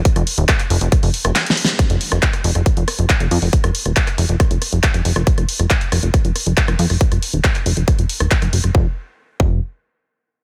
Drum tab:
HH |x--x--o--x--x--x--o--x--x--o--o--x--x--x--o--x--|x--x--o--x--x--x--o--x--x--x--o--x--x--x--o--o--|x--x--o--x--x--x--o--x--x--x--o--x--x--x--o--x--|x--x--o--x--x--x--o--x--x--x--o--x--x--x--o--o--|
CP |------------x--x--------------------x-----------|------------x-----------------------x-----------|------------x--x--------------------x-----------|------------x-----------------------x-----------|
SD |---r--------r-----------r--------r--o---o---o---|r--------r-----r-----r--------r-----r-----r-----|---r-----r-----r--------r-----r-----r--------r--|---r-----r--------r-----r-----r--------r-----r--|
BD |o-----------o-----------o-----------------------|o-----------o-----------o-----------o-----------|o-----------o-----------o-----------o-----------|o-----------o-----------o-----------o-----------|

HH |x--x--o--x--x--x--o--x--x--x--o--x--x--x--o--x--|------------------------------------------------|
CP |------------x--x--------------------x-----------|------------------------------------------------|
SD |---r--------r-----------r--------r-----r-----r--|------------------------------------------------|
BD |o-----------o-----------o-----------o-----------|o-----------------o-----------------------------|